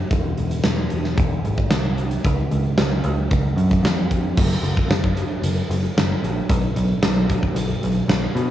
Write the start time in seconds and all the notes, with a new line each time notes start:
0.11 E1, kick, closed hi-hat
0.37 E1, closed hi-hat
0.51 closed hi-hat
0.64 E1, snare, closed hi-hat
0.90 E1, closed hi-hat
1.04 snare
1.18 E1, kick, closed hi-hat
1.44 G#1, closed hi-hat
1.58 kick
1.71 C2, snare, closed hi-hat
1.98 closed hi-hat
2.11 closed hi-hat
2.25 C#2, kick, closed hi-hat
2.51 C#2, closed hi-hat
2.78 C#2, snare, closed hi-hat
3.04 C#2, closed hi-hat
3.31 C#2, kick, closed hi-hat
3.56 F#2, closed hi-hat
3.71 kick, closed hi-hat
3.83 F2, snare, closed hi-hat
4.11 kick, closed hi-hat
4.37 F#1, kick, crash
4.63 F#1, closed hi-hat
4.77 kick
4.88 F#1, snare, closed hi-hat
5.04 kick
5.17 closed hi-hat
5.42 F#1, closed hi-hat
5.69 F#1, closed hi-hat
5.97 F#1, snare, closed hi-hat
6.22 A#1, closed hi-hat
6.50 B1, kick, closed hi-hat
6.76 B1, closed hi-hat
7.02 B1, snare, closed hi-hat
7.29 kick, closed hi-hat
7.43 kick
7.55 B1, closed hi-hat
7.83 B1, closed hi-hat
8.08 B1, snare, closed hi-hat
8.35 B2, closed hi-hat